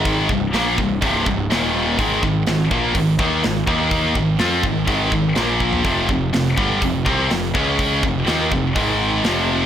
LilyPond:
<<
  \new Staff \with { instrumentName = "Distorted electric guitar" } { \clef bass \time 4/4 \key aes \major \tempo 4 = 124 <aes, ees aes>8 <c, g,>8 <bes, f bes>8 <c, g,>8 <c, g, c>8 <c, g,>8 <ees, bes, ees>4 | <aes, ees aes>8 <aes, ees>8 <aes, ees>8 <bes, f bes>8 <aes, ees>8 <ees bes ees'>8 <aes, ees>8 <ees bes ees'>8~ | <ees bes ees'>8 <aes, ees>8 <f c' f'>8 <aes, ees>8 <aes, ees aes>8 <aes, ees>8 <bes, f bes>4 | <f, c f>8 <f, c>8 <f, c>8 <g, d g>8 <f, c>8 <c g c'>8 <f, c>8 <des aes des'>8~ |
<des aes des'>8 <f, c>8 <ees bes ees'>8 <f, c>8 <aes, ees aes>4 <f, c f>4 | }
  \new Staff \with { instrumentName = "Distorted electric guitar" } { \clef bass \time 4/4 \key aes \major <aes, ees aes>8 <c, g,>8 <bes, f bes>8 <c, g,>8 <c, g, c>8 <c, g,>8 <ees, bes, ees>4 | <aes, ees aes>8 <aes, ees>8 <aes, ees>8 <bes, f bes>8 <aes, ees>8 <ees bes ees'>8 <aes, ees>8 <ees bes ees'>8~ | <ees bes ees'>8 <aes, ees>8 <f c' f'>8 <aes, ees>8 <aes, ees aes>8 <aes, ees>8 <bes, f bes>4 | <f, c f>8 <f, c>8 <f, c>8 <g, d g>8 <f, c>8 <c g c'>8 <f, c>8 <des aes des'>8~ |
<des aes des'>8 <f, c>8 <ees bes ees'>8 <f, c>8 <aes, ees aes>4 <f, c f>4 | }
  \new Staff \with { instrumentName = "Picked electric bass" } { \clef bass \time 4/4 \key aes \major aes,,8 c,,8 bes,,8 c,,8 c,,8 c,,8 ees,,4 | aes,,8 aes,,8 aes,,8 bes,,8 aes,,8 ees,8 aes,,8 ees,8~ | ees,8 aes,,8 f,8 aes,,8 aes,,8 aes,,8 bes,,4 | f,,8 f,,8 f,,8 g,,8 f,,8 c,8 f,,8 des,8~ |
des,8 f,,8 ees,8 f,,8 aes,,4 f,,4 | }
  \new DrumStaff \with { instrumentName = "Drums" } \drummode { \time 4/4 <hho bd>8 bd8 <hho sn>8 bd8 <hho bd>8 bd8 <hho sn>4 | <hho bd>8 bd8 <hho sn>8 bd8 <hho bd>8 bd8 <hho sn>8 bd8 | <hho bd>8 bd8 <hho sn>8 bd8 <hho bd>8 bd8 <hho sn>8 bd16 tomfh16 | <hho bd>8 bd8 <hho sn>8 bd8 <hho bd>8 bd8 <hho sn>8 bd8 |
<hho bd>8 bd8 <hho sn>8 bd8 <hho bd>4 <hho sn>4 | }
>>